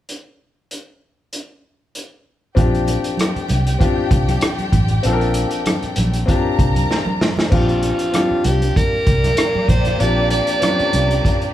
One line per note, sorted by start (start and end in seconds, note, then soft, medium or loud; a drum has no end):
0.09 closed hi-hat medium
0.71 closed hi-hat medium
1.33 closed hi-hat medium
1.95 closed hi-hat medium
2.55 2.96 A#1 loud
2.55 3.44 C4 medium
2.55 3.45 D4 medium
2.55 3.45 F4 medium
2.55 6.25 G4 medium
2.55 3.46 G4 medium
2.55 6.24 G5 medium
2.55 kick medium
2.55 closed hi-hat medium
2.55 muted conga soft
2.55 low conga medium
2.75 closed hi-hat soft
2.87 closed hi-hat medium
2.87 muted conga soft
3.04 closed hi-hat soft
3.17 cross-stick medium
3.17 closed hi-hat medium
3.17 high conga medium
3.36 muted fingered electric bass stroke soft
3.36 closed hi-hat soft
3.49 3.75 C2 medium
3.49 closed hi-hat medium
3.49 muted conga soft
3.49 high conga medium
3.67 closed hi-hat medium
3.79 4.68 C4 medium
3.79 4.69 D4 medium
3.79 4.69 F4 medium
3.79 4.70 G4 medium
3.79 kick medium
3.79 closed hi-hat medium
4.11 4.36 C2 medium
4.11 kick medium
4.11 closed hi-hat medium
4.11 muted conga soft
4.29 cross-stick soft
4.29 closed hi-hat soft
4.29 high conga medium
4.41 cross-stick loud
4.41 closed hi-hat medium
4.41 muted conga soft
4.59 closed hi-hat soft
4.59 high conga medium
4.73 4.98 A1 medium
4.73 kick medium
4.73 closed hi-hat medium
4.73 high conga medium
4.73 low conga medium
4.88 closed hi-hat soft
4.88 low conga medium
5.03 5.44 A#1 medium
5.03 5.92 C4 medium
5.03 5.93 D4 medium
5.03 5.93 F4 medium
5.03 5.12 A4 medium
5.03 closed hi-hat medium
5.03 low conga medium
5.13 5.97 A#4 medium
5.21 closed hi-hat soft
5.34 closed hi-hat medium
5.51 closed hi-hat soft
5.66 cross-stick medium
5.66 closed hi-hat medium
5.66 high conga medium
5.83 muted fingered electric bass stroke soft
5.83 closed hi-hat soft
5.96 6.23 A#1 medium
5.96 closed hi-hat medium
5.96 muted conga soft
5.96 high conga medium
6.14 closed hi-hat medium
6.26 7.15 C4 medium
6.26 7.16 D4 medium
6.26 7.17 F4 medium
6.26 7.50 A#4 medium
6.26 7.50 A#5 medium
6.26 kick medium
6.26 closed hi-hat medium
6.30 7.17 G4 medium
6.59 6.84 C2 medium
6.59 kick medium
6.59 closed hi-hat medium
6.76 closed hi-hat soft
6.76 high conga medium
6.90 snare medium
6.90 muted conga soft
7.06 high conga medium
7.21 snare medium
7.21 muted conga soft
7.21 high conga medium
7.21 low conga medium
7.37 snare medium
7.37 low conga medium
7.50 7.91 A#1 medium
7.50 7.96 C4 medium
7.50 7.97 D4 medium
7.50 7.97 F4 medium
7.50 8.47 F4 medium
7.50 7.98 G4 medium
7.50 kick medium
7.50 crash medium
7.69 closed hi-hat soft
7.83 closed hi-hat medium
7.83 muted conga soft
7.99 closed hi-hat soft
8.12 9.02 C4 medium
8.12 9.02 D4 medium
8.12 9.03 F4 medium
8.12 9.03 G4 medium
8.12 cross-stick medium
8.12 closed hi-hat medium
8.12 high conga medium
8.31 muted fingered electric bass stroke soft
8.44 8.70 C2 medium
8.44 8.78 G4 medium
8.44 closed hi-hat medium
8.44 muted conga soft
8.44 high conga medium
8.62 closed hi-hat soft
8.76 11.54 A#3 medium
8.76 11.54 G4 medium
8.76 9.69 A#4 medium
8.76 11.54 D5 medium
8.76 kick medium
8.76 closed hi-hat medium
8.76 muted conga soft
9.07 9.32 C2 medium
9.07 kick medium
9.07 closed hi-hat medium
9.24 cross-stick soft
9.24 closed hi-hat soft
9.24 high conga medium
9.37 cross-stick loud
9.37 closed hi-hat medium
9.55 muted fingered electric bass stroke soft
9.55 high conga medium
9.69 9.94 A#1 medium
9.69 10.01 C5 medium
9.69 kick medium
9.69 closed hi-hat medium
9.69 muted conga soft
9.69 high conga medium
9.69 low conga medium
9.85 cross-stick soft
9.85 closed hi-hat soft
9.85 low conga medium
9.98 10.39 A#1 medium
9.98 10.44 C4 medium
9.98 10.45 D4 medium
9.98 10.45 F4 medium
9.98 10.46 G4 medium
9.98 10.30 D5 medium
9.98 closed hi-hat medium
10.31 11.51 D5 medium
10.31 closed hi-hat medium
10.31 muted conga soft
10.47 closed hi-hat soft
10.60 11.50 C4 medium
10.60 10.69 C#4 soft
10.60 11.51 F4 medium
10.60 11.52 G4 medium
10.60 cross-stick medium
10.60 closed hi-hat medium
10.60 muted conga soft
10.60 high conga medium
10.68 11.53 D4 medium
10.79 muted fingered electric bass stroke soft
10.79 closed hi-hat soft
10.93 11.19 C2 medium
10.93 closed hi-hat medium
10.93 muted conga soft
10.93 high conga medium
11.11 closed hi-hat soft
11.25 kick medium
11.25 closed hi-hat medium
11.25 muted conga soft
11.42 closed hi-hat soft